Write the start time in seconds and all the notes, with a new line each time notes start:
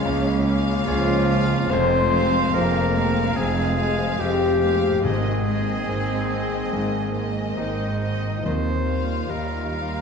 Already playing: C#2 C#3 F3 G#3 C#4 F4 G#4 C#5 F5
0.05 C#2 C#3 A#3
0.46 G#3 C#4 F5
0.86 C#2 F3 G#3 F4 G#4 C#5 F5
1.29 G#3 C#4 F5
1.55 F2
1.59 C4
1.63 F4
1.68 F1 F2 C4 C5 C6
1.72 F1 G#3
2.13 G#3 C4 F5
2.53 F1 F2 G#3 A#3 F4 A#4 C5 A#5
2.95 G#3 C4 F5
3.35 F1 F2 G#3 C4 G#4 G#5
3.77 G#3 C4 F5
4.19 F1 F2 G#3 C4 F4 G4 C5 G5
4.61 G#3 A#3 C4 F5
4.87 G#2
4.91 C4
4.96 D#4
5.01 G#1 G#2 G#3 C4 G#4 A#4 D#5 G#5
5.05 A#3 C4
5.46 A#3 C4 D#5
5.88 G#1 G#2 A#3 C4 D#4 C5
6.31 C4 D#5
6.72 G#1 G#2 A#3
7.15 C4 D#5
7.57 G#1 G#2 D#3 G#3 A#3 D#4 C5 D#5
8.02 C4 D#5
8.28 D#3
8.33 D#4
8.37 F4
8.41 C4 G4
8.45 D#2 D#3 C5 C6
8.88 G3 F4 F5
9.28 D#2 G3 A#3 F4 A#4 D#5 A#5
9.71 G3 F4 F5